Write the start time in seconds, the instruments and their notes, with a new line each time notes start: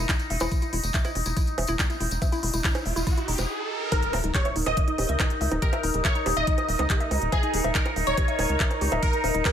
Already playing: synth drone D#4 D#5
0.09 synth arpeggio sound E4, kick, clap, closed hi-hat, tambourine
0.19 closed hi-hat, tambourine
0.30 analog synth bass E1, synth arpeggio sound E5, open hi-hat
0.40 analog synth bass E1, synth arpeggio sound E4, closed hi-hat, tambourine, high bongo
0.52 synth arpeggio sound E4, kick, closed hi-hat, tambourine, riser
0.62 synth arpeggio sound E4, closed hi-hat, tambourine
0.73 analog synth bass E1, synth arpeggio sound E4, open hi-hat
0.83 analog synth bass E1, closed hi-hat, tambourine
0.94 synth arpeggio sound E5, kick, clap, closed hi-hat, tambourine
1.04 synth arpeggio sound E4, closed hi-hat, tambourine, high bongo
1.15 analog synth bass E1, synth arpeggio sound E4, open hi-hat
1.26 analog synth bass E1, synth arpeggio sound E4, closed hi-hat, tambourine
1.37 synth arpeggio sound E4, kick, closed hi-hat, tambourine
1.47 closed hi-hat, tambourine
1.58 analog synth bass E1, synth arpeggio sound E5, open hi-hat, high bongo
1.67 analog synth bass E1, synth arpeggio sound E4, closed hi-hat, tambourine
1.79 synth arpeggio sound E4, kick, clap, closed hi-hat, tambourine
1.90 synth arpeggio sound E4, closed hi-hat, tambourine
2.00 analog synth bass E1, synth arpeggio sound E4, open hi-hat
2.11 analog synth bass E1, closed hi-hat, tambourine
2.22 synth arpeggio sound E5, kick, closed hi-hat, tambourine, high bongo
2.32 synth arpeggio sound E4, closed hi-hat, tambourine
2.43 analog synth bass E1, synth arpeggio sound E4, open hi-hat
2.53 analog synth bass E1, synth arpeggio sound E4, closed hi-hat, tambourine
2.64 synth arpeggio sound E4, kick, clap, closed hi-hat
2.75 closed hi-hat, tambourine, high bongo
2.86 analog synth bass E1, synth arpeggio sound E5, open hi-hat
2.96 analog synth bass E1, synth arpeggio sound E4, closed hi-hat, tambourine
3.07 synth arpeggio sound E4, kick, closed hi-hat, tambourine
3.17 synth arpeggio sound E4, closed hi-hat, tambourine
3.28 analog synth bass E1, synth arpeggio sound D#4, open hi-hat
3.38 analog synth bass E1, closed hi-hat, tambourine, high bongo
3.92 ambient pad D#4, synth arpeggio sound D#4, synth drone D#4 D#5, supersaw synth A#4, kick, closed hi-hat, high bongo, impact
4.03 closed hi-hat
4.13 analog synth bass D#1, ambient pad D#5, synth arpeggio sound E5, open hi-hat, high bongo
4.21 analog synth bass D#1, synth arpeggio sound D#4, ambient pad A#4, closed hi-hat
4.34 synth arpeggio sound G4, supersaw synth C#5, kick, clap, closed hi-hat
4.45 synth arpeggio sound E5, closed hi-hat, high bongo
4.54 analog synth bass D#1, synth arpeggio sound D#4, ambient pad A#5, open hi-hat
4.66 analog synth bass D#1, supersaw synth D#5, closed hi-hat, high bongo
4.77 synth arpeggio sound E5, kick, closed hi-hat
4.88 synth arpeggio sound D#4, closed hi-hat
4.98 analog synth bass D#1, wobble bass C#4, synth arpeggio sound G4, open hi-hat, high bongo
5.09 analog synth bass C#2, synth arpeggio sound E5, closed hi-hat
5.20 synth arpeggio sound D#4, kick, clap, closed hi-hat, high bongo
5.30 closed hi-hat
5.41 analog synth bass C#2, synth arpeggio sound E5, open hi-hat
5.51 analog synth bass D#1, wobble bass A#3, synth arpeggio sound D#4, closed hi-hat, high bongo
5.62 wobble bass A#3, synth arpeggio sound G4, supersaw synth A#4, kick, closed hi-hat
5.73 synth arpeggio sound E5, closed hi-hat, high bongo
5.83 analog synth bass D#1, synth arpeggio sound D#4, open hi-hat
5.94 analog synth bass D#1, wobble bass G3, closed hi-hat
6.05 supersaw synth C#5, synth arpeggio sound E5, kick, clap, closed hi-hat, high bongo
6.15 synth arpeggio sound D#4, closed hi-hat
6.26 analog synth bass D#1, synth arpeggio sound G4, open hi-hat, high bongo
6.37 analog synth bass D#1, supersaw synth D#5, synth arpeggio sound E5, closed hi-hat
6.47 synth arpeggio sound D#4, kick, closed hi-hat
6.58 closed hi-hat, high bongo
6.69 analog synth bass D#1, synth arpeggio sound E5, open hi-hat
6.79 analog synth bass C#2, wobble bass A#3, synth arpeggio sound D#4, closed hi-hat, high bongo
6.90 synth arpeggio sound G4, kick, clap, closed hi-hat
7.00 synth arpeggio sound E5, closed hi-hat
7.11 analog synth bass C#2, synth arpeggio sound D#4, open hi-hat, high bongo
7.22 analog synth bass D#1, closed hi-hat
7.32 supersaw synth G#4, synth arpeggio sound E5, kick, closed hi-hat, high bongo
7.43 synth arpeggio sound D#4, closed hi-hat
7.54 analog synth bass D#1, synth arpeggio sound G4, open hi-hat
7.64 analog synth bass D#1, synth arpeggio sound E5, closed hi-hat, high bongo
7.75 synth arpeggio sound D#4, supersaw synth A#4, kick, clap, closed hi-hat
7.86 closed hi-hat, high bongo
7.96 analog synth bass D#1, synth arpeggio sound E5, open hi-hat
8.07 analog synth bass D#1, synth arpeggio sound D#4, supersaw synth C#5, closed hi-hat
8.17 synth arpeggio sound G4, kick, closed hi-hat, high bongo
8.28 synth arpeggio sound E5, closed hi-hat
8.39 analog synth bass D#1, synth arpeggio sound D#4, open hi-hat, high bongo
8.49 analog synth bass C#2, closed hi-hat
8.60 synth arpeggio sound E5, kick, clap, closed hi-hat
8.71 synth arpeggio sound D#4, closed hi-hat, high bongo
8.81 analog synth bass C#2, synth arpeggio sound G4, open hi-hat
8.92 analog synth bass D#1, synth arpeggio sound E5, closed hi-hat, high bongo
9.03 synth arpeggio sound D#4, supersaw synth A#4, kick, closed hi-hat
9.13 closed hi-hat
9.24 analog synth bass D#1, synth arpeggio sound E5, open hi-hat, high bongo
9.35 analog synth bass D#1, synth arpeggio sound D#4, closed hi-hat
9.45 synth arpeggio sound G4, supersaw synth A#4, kick, clap, closed hi-hat, high bongo